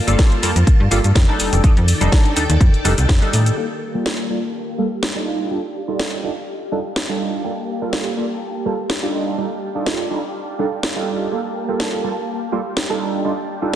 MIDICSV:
0, 0, Header, 1, 5, 480
1, 0, Start_track
1, 0, Key_signature, -2, "minor"
1, 0, Tempo, 483871
1, 1626, Time_signature, 4, 2, 24, 8
1, 13647, End_track
2, 0, Start_track
2, 0, Title_t, "String machine"
2, 0, Program_c, 0, 50
2, 0, Note_on_c, 0, 58, 77
2, 0, Note_on_c, 0, 65, 82
2, 0, Note_on_c, 0, 81, 92
2, 1369, Note_off_c, 0, 81, 0
2, 1370, Note_off_c, 0, 58, 0
2, 1370, Note_off_c, 0, 65, 0
2, 1385, Note_on_c, 0, 79, 91
2, 1387, Note_on_c, 0, 69, 76
2, 1387, Note_on_c, 0, 74, 79
2, 1388, Note_on_c, 0, 51, 86
2, 3524, Note_off_c, 0, 79, 0
2, 3525, Note_off_c, 0, 51, 0
2, 3525, Note_off_c, 0, 69, 0
2, 3525, Note_off_c, 0, 74, 0
2, 3546, Note_on_c, 0, 67, 77
2, 3547, Note_on_c, 0, 58, 77
2, 3547, Note_on_c, 0, 77, 72
2, 3547, Note_on_c, 0, 81, 86
2, 5210, Note_off_c, 0, 58, 0
2, 5226, Note_on_c, 0, 74, 75
2, 7364, Note_off_c, 0, 74, 0
2, 7388, Note_on_c, 0, 58, 75
2, 9050, Note_off_c, 0, 58, 0
2, 9065, Note_on_c, 0, 74, 71
2, 11186, Note_off_c, 0, 67, 0
2, 11204, Note_off_c, 0, 74, 0
2, 11226, Note_on_c, 0, 67, 81
2, 11227, Note_on_c, 0, 58, 69
2, 12867, Note_off_c, 0, 77, 0
2, 12890, Note_off_c, 0, 58, 0
2, 12901, Note_on_c, 0, 77, 77
2, 12902, Note_on_c, 0, 74, 76
2, 13647, Note_off_c, 0, 67, 0
2, 13647, Note_off_c, 0, 74, 0
2, 13647, Note_off_c, 0, 77, 0
2, 13647, Note_off_c, 0, 81, 0
2, 13647, End_track
3, 0, Start_track
3, 0, Title_t, "Analog polysynth"
3, 0, Program_c, 1, 90
3, 71, Note_on_c, 1, 55, 83
3, 73, Note_on_c, 1, 58, 77
3, 76, Note_on_c, 1, 65, 75
3, 79, Note_on_c, 1, 69, 90
3, 397, Note_off_c, 1, 55, 0
3, 399, Note_off_c, 1, 58, 0
3, 400, Note_off_c, 1, 65, 0
3, 401, Note_off_c, 1, 69, 0
3, 422, Note_on_c, 1, 55, 90
3, 425, Note_on_c, 1, 58, 80
3, 428, Note_on_c, 1, 65, 81
3, 430, Note_on_c, 1, 69, 98
3, 500, Note_off_c, 1, 55, 0
3, 501, Note_off_c, 1, 58, 0
3, 503, Note_off_c, 1, 65, 0
3, 504, Note_off_c, 1, 69, 0
3, 902, Note_on_c, 1, 55, 101
3, 905, Note_on_c, 1, 58, 96
3, 907, Note_on_c, 1, 65, 95
3, 910, Note_on_c, 1, 69, 113
3, 980, Note_off_c, 1, 55, 0
3, 981, Note_off_c, 1, 58, 0
3, 983, Note_off_c, 1, 65, 0
3, 984, Note_off_c, 1, 69, 0
3, 1271, Note_on_c, 1, 55, 86
3, 1273, Note_on_c, 1, 62, 79
3, 1276, Note_on_c, 1, 63, 75
3, 1279, Note_on_c, 1, 69, 94
3, 1597, Note_off_c, 1, 55, 0
3, 1599, Note_off_c, 1, 62, 0
3, 1600, Note_off_c, 1, 63, 0
3, 1601, Note_off_c, 1, 69, 0
3, 1621, Note_on_c, 1, 55, 77
3, 1624, Note_on_c, 1, 62, 69
3, 1626, Note_on_c, 1, 63, 72
3, 1628, Note_on_c, 1, 69, 84
3, 1699, Note_off_c, 1, 55, 0
3, 1701, Note_off_c, 1, 62, 0
3, 1702, Note_off_c, 1, 63, 0
3, 1703, Note_off_c, 1, 69, 0
3, 1991, Note_on_c, 1, 55, 82
3, 1992, Note_on_c, 1, 62, 78
3, 1996, Note_on_c, 1, 63, 80
3, 1998, Note_on_c, 1, 69, 92
3, 2317, Note_off_c, 1, 55, 0
3, 2318, Note_off_c, 1, 62, 0
3, 2320, Note_off_c, 1, 63, 0
3, 2321, Note_off_c, 1, 69, 0
3, 2341, Note_on_c, 1, 55, 84
3, 2344, Note_on_c, 1, 62, 80
3, 2346, Note_on_c, 1, 63, 78
3, 2349, Note_on_c, 1, 69, 98
3, 2419, Note_off_c, 1, 55, 0
3, 2421, Note_off_c, 1, 62, 0
3, 2422, Note_off_c, 1, 63, 0
3, 2423, Note_off_c, 1, 69, 0
3, 2821, Note_on_c, 1, 55, 106
3, 2824, Note_on_c, 1, 62, 94
3, 2826, Note_on_c, 1, 63, 93
3, 2828, Note_on_c, 1, 69, 112
3, 2899, Note_off_c, 1, 55, 0
3, 2901, Note_off_c, 1, 62, 0
3, 2902, Note_off_c, 1, 63, 0
3, 2903, Note_off_c, 1, 69, 0
3, 3190, Note_on_c, 1, 55, 84
3, 3193, Note_on_c, 1, 62, 76
3, 3196, Note_on_c, 1, 63, 77
3, 3199, Note_on_c, 1, 69, 93
3, 3517, Note_off_c, 1, 55, 0
3, 3519, Note_off_c, 1, 62, 0
3, 3520, Note_off_c, 1, 63, 0
3, 3521, Note_off_c, 1, 69, 0
3, 3541, Note_on_c, 1, 55, 69
3, 3544, Note_on_c, 1, 58, 69
3, 3547, Note_on_c, 1, 65, 69
3, 3549, Note_on_c, 1, 69, 80
3, 3620, Note_off_c, 1, 55, 0
3, 3621, Note_off_c, 1, 58, 0
3, 3622, Note_off_c, 1, 65, 0
3, 3623, Note_off_c, 1, 69, 0
3, 3912, Note_on_c, 1, 55, 80
3, 3915, Note_on_c, 1, 58, 73
3, 3917, Note_on_c, 1, 65, 72
3, 3920, Note_on_c, 1, 69, 83
3, 4238, Note_off_c, 1, 55, 0
3, 4239, Note_off_c, 1, 58, 0
3, 4241, Note_off_c, 1, 65, 0
3, 4242, Note_off_c, 1, 69, 0
3, 4261, Note_on_c, 1, 55, 86
3, 4263, Note_on_c, 1, 58, 76
3, 4266, Note_on_c, 1, 65, 78
3, 4269, Note_on_c, 1, 69, 95
3, 4339, Note_off_c, 1, 55, 0
3, 4340, Note_off_c, 1, 58, 0
3, 4342, Note_off_c, 1, 65, 0
3, 4343, Note_off_c, 1, 69, 0
3, 4742, Note_on_c, 1, 55, 95
3, 4745, Note_on_c, 1, 58, 89
3, 4747, Note_on_c, 1, 65, 90
3, 4750, Note_on_c, 1, 69, 107
3, 4820, Note_off_c, 1, 55, 0
3, 4821, Note_off_c, 1, 58, 0
3, 4822, Note_off_c, 1, 65, 0
3, 4824, Note_off_c, 1, 69, 0
3, 5110, Note_on_c, 1, 55, 81
3, 5111, Note_on_c, 1, 62, 73
3, 5113, Note_on_c, 1, 63, 76
3, 5116, Note_on_c, 1, 65, 72
3, 5118, Note_on_c, 1, 69, 90
3, 5437, Note_off_c, 1, 55, 0
3, 5438, Note_off_c, 1, 62, 0
3, 5439, Note_off_c, 1, 63, 0
3, 5440, Note_off_c, 1, 65, 0
3, 5441, Note_off_c, 1, 69, 0
3, 5461, Note_on_c, 1, 55, 73
3, 5463, Note_on_c, 1, 62, 67
3, 5466, Note_on_c, 1, 63, 64
3, 5467, Note_on_c, 1, 65, 62
3, 5470, Note_on_c, 1, 69, 82
3, 5539, Note_off_c, 1, 55, 0
3, 5540, Note_off_c, 1, 62, 0
3, 5542, Note_off_c, 1, 63, 0
3, 5542, Note_off_c, 1, 65, 0
3, 5544, Note_off_c, 1, 69, 0
3, 5830, Note_on_c, 1, 55, 79
3, 5832, Note_on_c, 1, 62, 71
3, 5834, Note_on_c, 1, 63, 75
3, 5836, Note_on_c, 1, 65, 72
3, 5838, Note_on_c, 1, 69, 86
3, 6157, Note_off_c, 1, 55, 0
3, 6158, Note_off_c, 1, 62, 0
3, 6159, Note_off_c, 1, 63, 0
3, 6160, Note_off_c, 1, 65, 0
3, 6161, Note_off_c, 1, 69, 0
3, 6182, Note_on_c, 1, 55, 83
3, 6184, Note_on_c, 1, 62, 77
3, 6186, Note_on_c, 1, 63, 77
3, 6188, Note_on_c, 1, 65, 76
3, 6190, Note_on_c, 1, 69, 94
3, 6260, Note_off_c, 1, 55, 0
3, 6261, Note_off_c, 1, 62, 0
3, 6262, Note_off_c, 1, 63, 0
3, 6263, Note_off_c, 1, 65, 0
3, 6264, Note_off_c, 1, 69, 0
3, 6663, Note_on_c, 1, 55, 95
3, 6664, Note_on_c, 1, 62, 90
3, 6666, Note_on_c, 1, 63, 91
3, 6668, Note_on_c, 1, 65, 89
3, 6670, Note_on_c, 1, 69, 110
3, 6740, Note_off_c, 1, 55, 0
3, 6741, Note_off_c, 1, 62, 0
3, 6742, Note_off_c, 1, 63, 0
3, 6743, Note_off_c, 1, 65, 0
3, 6744, Note_off_c, 1, 69, 0
3, 7030, Note_on_c, 1, 55, 79
3, 7031, Note_on_c, 1, 62, 72
3, 7034, Note_on_c, 1, 63, 78
3, 7035, Note_on_c, 1, 65, 73
3, 7038, Note_on_c, 1, 69, 94
3, 7357, Note_off_c, 1, 55, 0
3, 7358, Note_off_c, 1, 62, 0
3, 7359, Note_off_c, 1, 63, 0
3, 7360, Note_off_c, 1, 65, 0
3, 7361, Note_off_c, 1, 69, 0
3, 7381, Note_on_c, 1, 55, 74
3, 7384, Note_on_c, 1, 58, 66
3, 7387, Note_on_c, 1, 65, 64
3, 7390, Note_on_c, 1, 69, 82
3, 7459, Note_off_c, 1, 55, 0
3, 7461, Note_off_c, 1, 58, 0
3, 7462, Note_off_c, 1, 65, 0
3, 7464, Note_off_c, 1, 69, 0
3, 7752, Note_on_c, 1, 55, 80
3, 7754, Note_on_c, 1, 58, 75
3, 7756, Note_on_c, 1, 65, 71
3, 7760, Note_on_c, 1, 69, 91
3, 8078, Note_off_c, 1, 55, 0
3, 8079, Note_off_c, 1, 58, 0
3, 8080, Note_off_c, 1, 65, 0
3, 8082, Note_off_c, 1, 69, 0
3, 8102, Note_on_c, 1, 55, 82
3, 8105, Note_on_c, 1, 58, 80
3, 8108, Note_on_c, 1, 65, 80
3, 8110, Note_on_c, 1, 69, 88
3, 8180, Note_off_c, 1, 55, 0
3, 8181, Note_off_c, 1, 58, 0
3, 8183, Note_off_c, 1, 65, 0
3, 8184, Note_off_c, 1, 69, 0
3, 8583, Note_on_c, 1, 55, 97
3, 8587, Note_on_c, 1, 58, 91
3, 8589, Note_on_c, 1, 65, 91
3, 8591, Note_on_c, 1, 69, 104
3, 8660, Note_off_c, 1, 55, 0
3, 8662, Note_off_c, 1, 58, 0
3, 8663, Note_off_c, 1, 65, 0
3, 8664, Note_off_c, 1, 69, 0
3, 8952, Note_on_c, 1, 55, 85
3, 8954, Note_on_c, 1, 62, 73
3, 8956, Note_on_c, 1, 63, 77
3, 8958, Note_on_c, 1, 65, 75
3, 8960, Note_on_c, 1, 69, 88
3, 9278, Note_off_c, 1, 55, 0
3, 9279, Note_off_c, 1, 62, 0
3, 9280, Note_off_c, 1, 63, 0
3, 9281, Note_off_c, 1, 65, 0
3, 9282, Note_off_c, 1, 69, 0
3, 9303, Note_on_c, 1, 55, 73
3, 9305, Note_on_c, 1, 62, 65
3, 9306, Note_on_c, 1, 63, 68
3, 9308, Note_on_c, 1, 65, 68
3, 9311, Note_on_c, 1, 69, 81
3, 9381, Note_off_c, 1, 55, 0
3, 9381, Note_off_c, 1, 62, 0
3, 9382, Note_off_c, 1, 63, 0
3, 9383, Note_off_c, 1, 65, 0
3, 9384, Note_off_c, 1, 69, 0
3, 9671, Note_on_c, 1, 55, 77
3, 9673, Note_on_c, 1, 62, 73
3, 9675, Note_on_c, 1, 63, 69
3, 9676, Note_on_c, 1, 65, 74
3, 9678, Note_on_c, 1, 69, 89
3, 9997, Note_off_c, 1, 55, 0
3, 9998, Note_off_c, 1, 62, 0
3, 9999, Note_off_c, 1, 63, 0
3, 10000, Note_off_c, 1, 65, 0
3, 10001, Note_off_c, 1, 69, 0
3, 10022, Note_on_c, 1, 55, 84
3, 10024, Note_on_c, 1, 62, 78
3, 10026, Note_on_c, 1, 63, 76
3, 10028, Note_on_c, 1, 65, 76
3, 10030, Note_on_c, 1, 69, 96
3, 10100, Note_off_c, 1, 55, 0
3, 10101, Note_off_c, 1, 62, 0
3, 10102, Note_off_c, 1, 63, 0
3, 10103, Note_off_c, 1, 65, 0
3, 10104, Note_off_c, 1, 69, 0
3, 10503, Note_on_c, 1, 55, 98
3, 10505, Note_on_c, 1, 62, 91
3, 10507, Note_on_c, 1, 63, 89
3, 10509, Note_on_c, 1, 65, 91
3, 10511, Note_on_c, 1, 69, 107
3, 10580, Note_off_c, 1, 55, 0
3, 10581, Note_off_c, 1, 62, 0
3, 10582, Note_off_c, 1, 63, 0
3, 10583, Note_off_c, 1, 65, 0
3, 10584, Note_off_c, 1, 69, 0
3, 10869, Note_on_c, 1, 55, 84
3, 10872, Note_on_c, 1, 62, 71
3, 10874, Note_on_c, 1, 63, 75
3, 10876, Note_on_c, 1, 65, 76
3, 10878, Note_on_c, 1, 69, 87
3, 11197, Note_off_c, 1, 55, 0
3, 11198, Note_off_c, 1, 62, 0
3, 11199, Note_off_c, 1, 63, 0
3, 11200, Note_off_c, 1, 65, 0
3, 11201, Note_off_c, 1, 69, 0
3, 11222, Note_on_c, 1, 55, 74
3, 11225, Note_on_c, 1, 58, 68
3, 11227, Note_on_c, 1, 65, 67
3, 11230, Note_on_c, 1, 69, 82
3, 11300, Note_off_c, 1, 55, 0
3, 11301, Note_off_c, 1, 58, 0
3, 11302, Note_off_c, 1, 65, 0
3, 11304, Note_off_c, 1, 69, 0
3, 11591, Note_on_c, 1, 55, 76
3, 11593, Note_on_c, 1, 58, 70
3, 11595, Note_on_c, 1, 65, 73
3, 11598, Note_on_c, 1, 69, 84
3, 11917, Note_off_c, 1, 55, 0
3, 11918, Note_off_c, 1, 58, 0
3, 11919, Note_off_c, 1, 65, 0
3, 11921, Note_off_c, 1, 69, 0
3, 11940, Note_on_c, 1, 55, 87
3, 11942, Note_on_c, 1, 58, 78
3, 11945, Note_on_c, 1, 65, 74
3, 11948, Note_on_c, 1, 69, 97
3, 12019, Note_off_c, 1, 55, 0
3, 12020, Note_off_c, 1, 58, 0
3, 12021, Note_off_c, 1, 65, 0
3, 12023, Note_off_c, 1, 69, 0
3, 12419, Note_on_c, 1, 55, 100
3, 12422, Note_on_c, 1, 58, 92
3, 12424, Note_on_c, 1, 65, 89
3, 12427, Note_on_c, 1, 69, 105
3, 12498, Note_off_c, 1, 55, 0
3, 12500, Note_off_c, 1, 58, 0
3, 12501, Note_off_c, 1, 65, 0
3, 12502, Note_off_c, 1, 69, 0
3, 12790, Note_on_c, 1, 55, 78
3, 12793, Note_on_c, 1, 62, 73
3, 12795, Note_on_c, 1, 63, 76
3, 12796, Note_on_c, 1, 65, 72
3, 12798, Note_on_c, 1, 69, 92
3, 13117, Note_off_c, 1, 55, 0
3, 13118, Note_off_c, 1, 62, 0
3, 13119, Note_off_c, 1, 63, 0
3, 13120, Note_off_c, 1, 65, 0
3, 13121, Note_off_c, 1, 69, 0
3, 13140, Note_on_c, 1, 55, 74
3, 13143, Note_on_c, 1, 62, 69
3, 13144, Note_on_c, 1, 63, 66
3, 13146, Note_on_c, 1, 65, 67
3, 13148, Note_on_c, 1, 69, 83
3, 13219, Note_off_c, 1, 55, 0
3, 13220, Note_off_c, 1, 62, 0
3, 13221, Note_off_c, 1, 63, 0
3, 13222, Note_off_c, 1, 65, 0
3, 13223, Note_off_c, 1, 69, 0
3, 13509, Note_on_c, 1, 55, 79
3, 13511, Note_on_c, 1, 62, 71
3, 13513, Note_on_c, 1, 63, 72
3, 13516, Note_on_c, 1, 65, 69
3, 13517, Note_on_c, 1, 69, 85
3, 13647, Note_off_c, 1, 55, 0
3, 13647, Note_off_c, 1, 62, 0
3, 13647, Note_off_c, 1, 63, 0
3, 13647, Note_off_c, 1, 65, 0
3, 13647, Note_off_c, 1, 69, 0
3, 13647, End_track
4, 0, Start_track
4, 0, Title_t, "FM bass"
4, 0, Program_c, 2, 39
4, 76, Note_on_c, 2, 31, 98
4, 155, Note_off_c, 2, 31, 0
4, 426, Note_on_c, 2, 41, 45
4, 529, Note_off_c, 2, 41, 0
4, 553, Note_on_c, 2, 41, 96
4, 634, Note_off_c, 2, 41, 0
4, 794, Note_on_c, 2, 43, 97
4, 874, Note_off_c, 2, 43, 0
4, 905, Note_on_c, 2, 31, 84
4, 998, Note_off_c, 2, 31, 0
4, 1034, Note_on_c, 2, 43, 88
4, 1114, Note_off_c, 2, 43, 0
4, 1144, Note_on_c, 2, 41, 103
4, 1237, Note_off_c, 2, 41, 0
4, 1386, Note_on_c, 2, 29, 43
4, 1489, Note_off_c, 2, 29, 0
4, 1515, Note_on_c, 2, 29, 98
4, 1594, Note_off_c, 2, 29, 0
4, 1754, Note_on_c, 2, 41, 99
4, 1921, Note_off_c, 2, 41, 0
4, 1995, Note_on_c, 2, 29, 96
4, 2075, Note_off_c, 2, 29, 0
4, 2348, Note_on_c, 2, 39, 45
4, 2450, Note_off_c, 2, 39, 0
4, 2475, Note_on_c, 2, 39, 102
4, 2554, Note_off_c, 2, 39, 0
4, 2585, Note_on_c, 2, 41, 102
4, 2678, Note_off_c, 2, 41, 0
4, 2716, Note_on_c, 2, 29, 46
4, 2804, Note_off_c, 2, 29, 0
4, 2827, Note_on_c, 2, 29, 103
4, 2919, Note_off_c, 2, 29, 0
4, 2957, Note_on_c, 2, 36, 97
4, 3036, Note_off_c, 2, 36, 0
4, 3065, Note_on_c, 2, 41, 90
4, 3158, Note_off_c, 2, 41, 0
4, 3306, Note_on_c, 2, 45, 82
4, 3483, Note_off_c, 2, 45, 0
4, 13647, End_track
5, 0, Start_track
5, 0, Title_t, "Drums"
5, 77, Note_on_c, 9, 42, 55
5, 78, Note_on_c, 9, 82, 46
5, 176, Note_off_c, 9, 42, 0
5, 177, Note_off_c, 9, 82, 0
5, 185, Note_on_c, 9, 36, 100
5, 187, Note_on_c, 9, 38, 111
5, 187, Note_on_c, 9, 42, 81
5, 188, Note_on_c, 9, 82, 36
5, 285, Note_off_c, 9, 36, 0
5, 287, Note_off_c, 9, 38, 0
5, 287, Note_off_c, 9, 42, 0
5, 287, Note_off_c, 9, 82, 0
5, 316, Note_on_c, 9, 42, 38
5, 415, Note_off_c, 9, 42, 0
5, 428, Note_on_c, 9, 46, 98
5, 429, Note_on_c, 9, 82, 80
5, 527, Note_off_c, 9, 46, 0
5, 528, Note_off_c, 9, 82, 0
5, 557, Note_on_c, 9, 42, 54
5, 558, Note_on_c, 9, 82, 47
5, 656, Note_off_c, 9, 42, 0
5, 657, Note_off_c, 9, 82, 0
5, 665, Note_on_c, 9, 36, 112
5, 667, Note_on_c, 9, 42, 80
5, 668, Note_on_c, 9, 82, 35
5, 764, Note_off_c, 9, 36, 0
5, 767, Note_off_c, 9, 42, 0
5, 767, Note_off_c, 9, 82, 0
5, 907, Note_on_c, 9, 46, 95
5, 908, Note_on_c, 9, 82, 78
5, 1006, Note_off_c, 9, 46, 0
5, 1007, Note_off_c, 9, 82, 0
5, 1035, Note_on_c, 9, 42, 54
5, 1036, Note_on_c, 9, 82, 44
5, 1135, Note_off_c, 9, 42, 0
5, 1135, Note_off_c, 9, 82, 0
5, 1145, Note_on_c, 9, 36, 98
5, 1148, Note_on_c, 9, 38, 112
5, 1148, Note_on_c, 9, 42, 82
5, 1148, Note_on_c, 9, 82, 34
5, 1245, Note_off_c, 9, 36, 0
5, 1247, Note_off_c, 9, 38, 0
5, 1247, Note_off_c, 9, 42, 0
5, 1248, Note_off_c, 9, 82, 0
5, 1386, Note_on_c, 9, 46, 94
5, 1387, Note_on_c, 9, 82, 86
5, 1486, Note_off_c, 9, 46, 0
5, 1487, Note_off_c, 9, 82, 0
5, 1516, Note_on_c, 9, 42, 55
5, 1517, Note_on_c, 9, 82, 47
5, 1615, Note_off_c, 9, 42, 0
5, 1616, Note_off_c, 9, 82, 0
5, 1625, Note_on_c, 9, 36, 112
5, 1627, Note_on_c, 9, 42, 82
5, 1627, Note_on_c, 9, 82, 35
5, 1724, Note_off_c, 9, 36, 0
5, 1726, Note_off_c, 9, 42, 0
5, 1727, Note_off_c, 9, 82, 0
5, 1756, Note_on_c, 9, 42, 39
5, 1855, Note_off_c, 9, 42, 0
5, 1867, Note_on_c, 9, 46, 95
5, 1868, Note_on_c, 9, 82, 77
5, 1966, Note_off_c, 9, 46, 0
5, 1967, Note_off_c, 9, 82, 0
5, 1996, Note_on_c, 9, 42, 57
5, 1997, Note_on_c, 9, 82, 45
5, 2095, Note_off_c, 9, 42, 0
5, 2096, Note_off_c, 9, 82, 0
5, 2105, Note_on_c, 9, 36, 101
5, 2108, Note_on_c, 9, 38, 121
5, 2108, Note_on_c, 9, 42, 80
5, 2109, Note_on_c, 9, 82, 34
5, 2204, Note_off_c, 9, 36, 0
5, 2207, Note_off_c, 9, 38, 0
5, 2207, Note_off_c, 9, 42, 0
5, 2208, Note_off_c, 9, 82, 0
5, 2237, Note_on_c, 9, 42, 39
5, 2336, Note_off_c, 9, 42, 0
5, 2347, Note_on_c, 9, 46, 98
5, 2348, Note_on_c, 9, 82, 78
5, 2446, Note_off_c, 9, 46, 0
5, 2447, Note_off_c, 9, 82, 0
5, 2476, Note_on_c, 9, 42, 58
5, 2477, Note_on_c, 9, 82, 48
5, 2576, Note_off_c, 9, 42, 0
5, 2576, Note_off_c, 9, 82, 0
5, 2585, Note_on_c, 9, 36, 117
5, 2588, Note_on_c, 9, 42, 85
5, 2589, Note_on_c, 9, 82, 37
5, 2684, Note_off_c, 9, 36, 0
5, 2687, Note_off_c, 9, 42, 0
5, 2688, Note_off_c, 9, 82, 0
5, 2718, Note_on_c, 9, 42, 38
5, 2817, Note_off_c, 9, 42, 0
5, 2828, Note_on_c, 9, 46, 100
5, 2829, Note_on_c, 9, 82, 81
5, 2928, Note_off_c, 9, 46, 0
5, 2928, Note_off_c, 9, 82, 0
5, 2956, Note_on_c, 9, 42, 54
5, 2957, Note_on_c, 9, 82, 47
5, 3055, Note_off_c, 9, 42, 0
5, 3056, Note_off_c, 9, 82, 0
5, 3065, Note_on_c, 9, 36, 102
5, 3068, Note_on_c, 9, 38, 123
5, 3068, Note_on_c, 9, 42, 84
5, 3069, Note_on_c, 9, 82, 35
5, 3164, Note_off_c, 9, 36, 0
5, 3167, Note_off_c, 9, 38, 0
5, 3167, Note_off_c, 9, 42, 0
5, 3168, Note_off_c, 9, 82, 0
5, 3196, Note_on_c, 9, 42, 38
5, 3295, Note_off_c, 9, 42, 0
5, 3308, Note_on_c, 9, 46, 99
5, 3309, Note_on_c, 9, 82, 83
5, 3407, Note_off_c, 9, 46, 0
5, 3408, Note_off_c, 9, 82, 0
5, 3436, Note_on_c, 9, 42, 56
5, 3437, Note_on_c, 9, 82, 48
5, 3535, Note_off_c, 9, 42, 0
5, 3536, Note_off_c, 9, 82, 0
5, 4026, Note_on_c, 9, 38, 114
5, 4125, Note_off_c, 9, 38, 0
5, 4987, Note_on_c, 9, 38, 111
5, 5086, Note_off_c, 9, 38, 0
5, 5947, Note_on_c, 9, 38, 112
5, 6046, Note_off_c, 9, 38, 0
5, 6906, Note_on_c, 9, 38, 121
5, 7005, Note_off_c, 9, 38, 0
5, 7865, Note_on_c, 9, 38, 112
5, 7965, Note_off_c, 9, 38, 0
5, 8826, Note_on_c, 9, 38, 115
5, 8925, Note_off_c, 9, 38, 0
5, 9785, Note_on_c, 9, 38, 108
5, 9885, Note_off_c, 9, 38, 0
5, 10746, Note_on_c, 9, 38, 111
5, 10845, Note_off_c, 9, 38, 0
5, 11705, Note_on_c, 9, 38, 103
5, 11804, Note_off_c, 9, 38, 0
5, 12665, Note_on_c, 9, 38, 104
5, 12764, Note_off_c, 9, 38, 0
5, 13647, End_track
0, 0, End_of_file